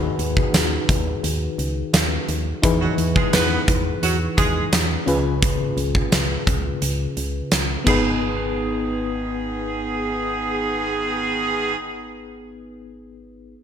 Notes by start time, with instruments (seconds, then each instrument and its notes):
Already playing: fm electric piano D#3 D#4 F#4 G#4 B4
0.19 fm bass D#2, closed hi-hat
0.37 kick
0.53 fm bass D#2, snare, closed hi-hat, tambourine
0.89 fm bass D#2, kick, closed hi-hat
1.24 fm bass D#2, closed hi-hat
1.58 fm bass C#2, closed hi-hat
1.93 fm bass D#2, snare, closed hi-hat, tambourine
2.28 fm bass D#2, closed hi-hat
2.62 fm bass E2, fm electric piano E3 D#4 E4 G#4 B4, kick, closed hi-hat
2.81 horn section F#3 F#4
2.98 fm bass E2, closed hi-hat
3.16 horn section G#3 G#4, kick
3.33 fm bass E2, horn section B3 B4, snare, closed hi-hat, tambourine
3.68 fm bass E2, kick, closed hi-hat
4.03 fm bass E2, horn section F#3 F#4, closed hi-hat
4.38 fm bass D#2, horn section G#3 G#4, kick, closed hi-hat
4.72 fm bass E2, snare, closed hi-hat, tambourine
5.06 fm bass C#2, fm electric piano C#3 C#4 F4 G#4 B4, closed hi-hat
5.42 kick, closed hi-hat
5.77 fm bass C#2, closed hi-hat
5.95 kick
6.12 fm bass C#2, snare, closed hi-hat, tambourine
6.47 fm bass C#2, kick, closed hi-hat
6.82 fm bass C#2, closed hi-hat
7.17 fm bass C#2, closed hi-hat
7.51 fm bass C#2, snare, closed hi-hat, tambourine
7.84 fm electric piano G#1 B3 D#4 G#4, fm bass G#1, horn section D#3 B3 G#4, kick, crash
7.89 fm electric piano B4